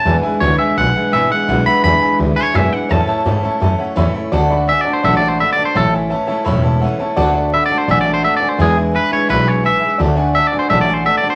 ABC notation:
X:1
M:4/4
L:1/8
Q:1/4=169
K:Dlyd
V:1 name="Upright piano"
[Beg] [Beg] [Bef] [Beg] [Beg] [Beg] [Beg] [eg] | [Bef] [Bef] [Beg] [Beg] [Beb] [Beg] [Beg] [Beg] | [cea] [cea] [cea] [cea] [cea] [cef] [ceb] [ceb] | [dfa] [dfb] [dfg] [dfa] [dfa] [dfa] [dfb] [dfa] |
[cea] [ceg] [cea] [cea] [ceb] [cea] [cef] [cea] | [dfa] [dfa] [dfb] [dfa] [dfg] [df] [dfa] [dfg] | [Beg] [Beg] [Beg] [Beg] [Beb] [Beg] [Beg] [Beg] | [dfa] [dfg] [dfa] [dfg] [dfa] d [dfa] [dfa] |]
V:2 name="Clean electric guitar"
a z c e f2 e f- | f b b2 z c e f | a4 z4 | z2 (3e d =c (3e d c (3e d c |
A z6 z | z2 (3e d =c (3e d c (3e d c | G z B c B c e2 | z2 (3e d =c (3e d c (3e d c |]
V:3 name="Steel-string acoustic guitar"
[E,,B,,E,G,DE] [E,G,DE] [E,,B,,E,G,DE] [E,G,DE] [E,G,DE] [E,G,DE] [E,,B,,E,G,DE] [E,G,DE] | [E,,B,,E,G,DE] [E,G,DE] [E,,B,,E,G,DE] [E,G,DE] [E,G,DE] [E,G,DE] [E,,B,,E,G,DE] [E,G,DE] | [A,,E,A,CE] [A,CE] [A,,E,A,CE] [A,CE] [E,A,CE] [A,CE] [A,,E,A,CE] [A,CE] | [D,A,DF] [A,DF] [D,A,DF] [A,DF] [D,A,DF] [A,DF] [D,A,DF] [A,DF] |
[A,,E,A,CE] [A,CE] [E,A,CE] [A,CE] [A,,E,A,CE] [A,CE] [E,A,CE] [A,CE] | [D,A,DF] [A,DF] [D,A,DF] [A,DF] [D,A,DF] [A,DF] [D,A,DF] [A,DF] | [E,,B,,E,G,DE] [E,G,DE] [E,G,DE] [E,G,DE] [E,,B,,E,G,DE] [E,G,DE] [E,G,DE] [E,G,DE] | [D,A,DF] [A,DF] [D,A,DF] [A,DF] [D,A,DF] [A,DF] [D,A,DF] [A,DF] |]
V:4 name="Upright bass" clef=bass
E,, z D,, z B,,, z G,,, z | B,,, z E,, z D,, z F,, z | E,, z G,, z F,, z E,, z | D,,3 z A,,,3 z |
A,,,3 z E,,,3 z | D,,3 z A,,,3 z | E,,3 z B,,,3 z | D,,3 z A,,,3 z |]